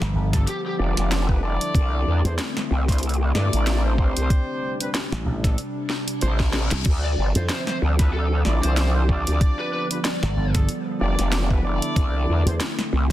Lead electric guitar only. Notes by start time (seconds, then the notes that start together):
0.48 G4
0.66 G4
7.04 D5
7.50 C5
7.68 C5
8.14 A4
8.63 C5
8.77 C5
9.59 B4
9.73 B4
10.05 D5